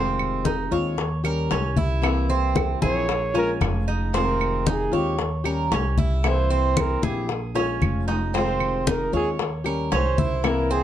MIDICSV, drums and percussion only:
0, 0, Header, 1, 2, 480
1, 0, Start_track
1, 0, Key_signature, -4, "minor"
1, 0, Tempo, 525394
1, 1859, Time_signature, 4, 2, 24, 8
1, 9897, End_track
2, 0, Start_track
2, 0, Title_t, "Drums"
2, 177, Note_on_c, 9, 63, 33
2, 178, Note_on_c, 9, 75, 61
2, 269, Note_off_c, 9, 63, 0
2, 269, Note_off_c, 9, 75, 0
2, 410, Note_on_c, 9, 60, 58
2, 413, Note_on_c, 9, 63, 99
2, 501, Note_off_c, 9, 60, 0
2, 504, Note_off_c, 9, 63, 0
2, 654, Note_on_c, 9, 63, 35
2, 745, Note_off_c, 9, 63, 0
2, 892, Note_on_c, 9, 63, 34
2, 896, Note_on_c, 9, 60, 68
2, 983, Note_off_c, 9, 63, 0
2, 988, Note_off_c, 9, 60, 0
2, 1135, Note_on_c, 9, 63, 33
2, 1140, Note_on_c, 9, 75, 63
2, 1227, Note_off_c, 9, 63, 0
2, 1231, Note_off_c, 9, 75, 0
2, 1375, Note_on_c, 9, 63, 33
2, 1377, Note_on_c, 9, 60, 62
2, 1377, Note_on_c, 9, 61, 74
2, 1467, Note_off_c, 9, 63, 0
2, 1469, Note_off_c, 9, 60, 0
2, 1469, Note_off_c, 9, 61, 0
2, 1613, Note_on_c, 9, 63, 77
2, 1705, Note_off_c, 9, 63, 0
2, 1858, Note_on_c, 9, 63, 31
2, 1859, Note_on_c, 9, 60, 69
2, 1864, Note_on_c, 9, 75, 66
2, 1949, Note_off_c, 9, 63, 0
2, 1951, Note_off_c, 9, 60, 0
2, 1955, Note_off_c, 9, 75, 0
2, 2095, Note_on_c, 9, 63, 36
2, 2101, Note_on_c, 9, 60, 34
2, 2186, Note_off_c, 9, 63, 0
2, 2193, Note_off_c, 9, 60, 0
2, 2335, Note_on_c, 9, 63, 99
2, 2340, Note_on_c, 9, 60, 54
2, 2346, Note_on_c, 9, 75, 68
2, 2426, Note_off_c, 9, 63, 0
2, 2432, Note_off_c, 9, 60, 0
2, 2437, Note_off_c, 9, 75, 0
2, 2576, Note_on_c, 9, 63, 85
2, 2668, Note_off_c, 9, 63, 0
2, 2822, Note_on_c, 9, 60, 73
2, 2823, Note_on_c, 9, 63, 35
2, 2913, Note_off_c, 9, 60, 0
2, 2914, Note_off_c, 9, 63, 0
2, 3061, Note_on_c, 9, 63, 35
2, 3063, Note_on_c, 9, 60, 31
2, 3152, Note_off_c, 9, 63, 0
2, 3154, Note_off_c, 9, 60, 0
2, 3298, Note_on_c, 9, 63, 71
2, 3302, Note_on_c, 9, 60, 66
2, 3302, Note_on_c, 9, 61, 79
2, 3306, Note_on_c, 9, 75, 67
2, 3389, Note_off_c, 9, 63, 0
2, 3394, Note_off_c, 9, 60, 0
2, 3394, Note_off_c, 9, 61, 0
2, 3398, Note_off_c, 9, 75, 0
2, 3542, Note_on_c, 9, 63, 31
2, 3544, Note_on_c, 9, 60, 34
2, 3634, Note_off_c, 9, 63, 0
2, 3635, Note_off_c, 9, 60, 0
2, 3782, Note_on_c, 9, 63, 32
2, 3785, Note_on_c, 9, 60, 75
2, 3873, Note_off_c, 9, 63, 0
2, 3876, Note_off_c, 9, 60, 0
2, 4024, Note_on_c, 9, 63, 34
2, 4029, Note_on_c, 9, 75, 66
2, 4115, Note_off_c, 9, 63, 0
2, 4121, Note_off_c, 9, 75, 0
2, 4262, Note_on_c, 9, 63, 101
2, 4263, Note_on_c, 9, 60, 55
2, 4353, Note_off_c, 9, 63, 0
2, 4355, Note_off_c, 9, 60, 0
2, 4504, Note_on_c, 9, 63, 35
2, 4596, Note_off_c, 9, 63, 0
2, 4738, Note_on_c, 9, 60, 69
2, 4745, Note_on_c, 9, 63, 34
2, 4829, Note_off_c, 9, 60, 0
2, 4836, Note_off_c, 9, 63, 0
2, 4983, Note_on_c, 9, 75, 61
2, 4985, Note_on_c, 9, 63, 35
2, 5074, Note_off_c, 9, 75, 0
2, 5076, Note_off_c, 9, 63, 0
2, 5223, Note_on_c, 9, 60, 65
2, 5223, Note_on_c, 9, 61, 80
2, 5226, Note_on_c, 9, 63, 31
2, 5315, Note_off_c, 9, 60, 0
2, 5315, Note_off_c, 9, 61, 0
2, 5318, Note_off_c, 9, 63, 0
2, 5460, Note_on_c, 9, 63, 76
2, 5551, Note_off_c, 9, 63, 0
2, 5702, Note_on_c, 9, 60, 69
2, 5702, Note_on_c, 9, 75, 66
2, 5703, Note_on_c, 9, 63, 32
2, 5793, Note_off_c, 9, 60, 0
2, 5793, Note_off_c, 9, 75, 0
2, 5794, Note_off_c, 9, 63, 0
2, 5941, Note_on_c, 9, 60, 31
2, 5943, Note_on_c, 9, 63, 34
2, 6032, Note_off_c, 9, 60, 0
2, 6035, Note_off_c, 9, 63, 0
2, 6183, Note_on_c, 9, 63, 103
2, 6184, Note_on_c, 9, 60, 56
2, 6187, Note_on_c, 9, 75, 65
2, 6274, Note_off_c, 9, 63, 0
2, 6276, Note_off_c, 9, 60, 0
2, 6278, Note_off_c, 9, 75, 0
2, 6424, Note_on_c, 9, 63, 93
2, 6515, Note_off_c, 9, 63, 0
2, 6660, Note_on_c, 9, 60, 67
2, 6663, Note_on_c, 9, 63, 35
2, 6752, Note_off_c, 9, 60, 0
2, 6755, Note_off_c, 9, 63, 0
2, 6903, Note_on_c, 9, 60, 82
2, 6905, Note_on_c, 9, 63, 35
2, 6995, Note_off_c, 9, 60, 0
2, 6996, Note_off_c, 9, 63, 0
2, 7142, Note_on_c, 9, 63, 78
2, 7147, Note_on_c, 9, 75, 64
2, 7233, Note_off_c, 9, 63, 0
2, 7238, Note_off_c, 9, 75, 0
2, 7385, Note_on_c, 9, 61, 87
2, 7385, Note_on_c, 9, 63, 33
2, 7476, Note_off_c, 9, 61, 0
2, 7476, Note_off_c, 9, 63, 0
2, 7627, Note_on_c, 9, 60, 66
2, 7628, Note_on_c, 9, 63, 30
2, 7719, Note_off_c, 9, 60, 0
2, 7719, Note_off_c, 9, 63, 0
2, 7861, Note_on_c, 9, 75, 63
2, 7867, Note_on_c, 9, 63, 34
2, 7952, Note_off_c, 9, 75, 0
2, 7958, Note_off_c, 9, 63, 0
2, 8104, Note_on_c, 9, 63, 100
2, 8109, Note_on_c, 9, 60, 54
2, 8196, Note_off_c, 9, 63, 0
2, 8200, Note_off_c, 9, 60, 0
2, 8344, Note_on_c, 9, 63, 34
2, 8436, Note_off_c, 9, 63, 0
2, 8582, Note_on_c, 9, 60, 72
2, 8584, Note_on_c, 9, 63, 33
2, 8673, Note_off_c, 9, 60, 0
2, 8676, Note_off_c, 9, 63, 0
2, 8823, Note_on_c, 9, 75, 62
2, 8827, Note_on_c, 9, 63, 34
2, 8914, Note_off_c, 9, 75, 0
2, 8918, Note_off_c, 9, 63, 0
2, 9061, Note_on_c, 9, 60, 65
2, 9061, Note_on_c, 9, 61, 77
2, 9065, Note_on_c, 9, 63, 33
2, 9153, Note_off_c, 9, 60, 0
2, 9153, Note_off_c, 9, 61, 0
2, 9156, Note_off_c, 9, 63, 0
2, 9302, Note_on_c, 9, 63, 83
2, 9394, Note_off_c, 9, 63, 0
2, 9537, Note_on_c, 9, 60, 69
2, 9542, Note_on_c, 9, 75, 67
2, 9543, Note_on_c, 9, 63, 32
2, 9629, Note_off_c, 9, 60, 0
2, 9633, Note_off_c, 9, 75, 0
2, 9635, Note_off_c, 9, 63, 0
2, 9780, Note_on_c, 9, 63, 36
2, 9783, Note_on_c, 9, 60, 31
2, 9872, Note_off_c, 9, 63, 0
2, 9874, Note_off_c, 9, 60, 0
2, 9897, End_track
0, 0, End_of_file